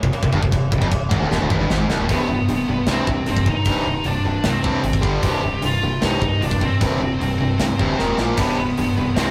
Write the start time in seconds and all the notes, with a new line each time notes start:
0.03 C1 C2, kick
0.13 muted distorted electric guitar stroke, muted fingered electric bass stroke, china
0.23 C1 C2, kick
0.32 G1 G2, kick
0.43 C1 C2, kick
0.52 C1 C2, kick, china
0.72 C1 C2, kick
0.81 F1 F2, kick
0.92 C1 C2, kick, china
1.11 G#1 G#2, kick
1.20 D1 D2
1.31 D#1 D#2, snare
1.40 D1 D2
1.50 G#1 G#2, kick
1.60 G1 G2
1.69 G#1 G#2, snare
1.88 C1 C2, snare
1.99 D#1 D#2
2.09 C1 C2 G2 C3 B3, kick, open hi-hat
2.28 C1 C2 G2 C3
2.48 C1 C2 G2 C3, open hi-hat
2.68 C1 C2 G2 C3
2.87 C2 G2 C3 C4, snare, open hi-hat
3.07 C2 G2 C3, kick
3.26 C1 C2 G2 C3 C4, open hi-hat
3.37 kick
3.46 C2 G2 C3 D#4, kick
3.65 C1 C2 G2 C3, kick, open hi-hat
3.85 C1 C2 G2 C3
4.03 C1 C2 G2 C3 D4, open hi-hat
4.23 C1 C2 G2 C3
4.43 C2 G2 C3 C4, snare, open hi-hat
4.63 C2 G2 C3, kick
4.83 G#1 C2 G2 C3, open hi-hat
4.93 kick
5.02 G1 G2 D3 G3, kick
5.23 C1 C2 G2 C3 G4, kick, open hi-hat
5.42 C1 C2 G2 C3
5.62 C1 C2 G2 C3 F4, open hi-hat
5.82 C1 C2 G2 C3
6.01 C2 G2 C3 D#4, snare, open hi-hat
6.21 C2 G2 C3, kick
6.40 C1 C2 G2 C3 D4, open hi-hat
6.51 kick
6.61 C2 G2 C3 C4, kick
6.80 C1 C2 G2 C3, kick, open hi-hat
7.00 C1 C2 G2 C3
7.20 C1 C2 G2 C3, open hi-hat
7.40 C1 C2 G2 C3
7.59 C2 G2 C3, snare, open hi-hat
7.79 D1 C2 G2 C3, kick
7.99 D#1 D#2 A#2 D#3, snare
8.18 A#1 A#2 F3 A#3, snare
8.37 C1 C2 G2 C3 B3, kick, open hi-hat, crash
8.57 C1 C2 G2 C3
8.77 C1 C2 G2 C3, open hi-hat
8.97 C1 C2 G2 C3
9.15 C2 G2 C3 C4, snare, open hi-hat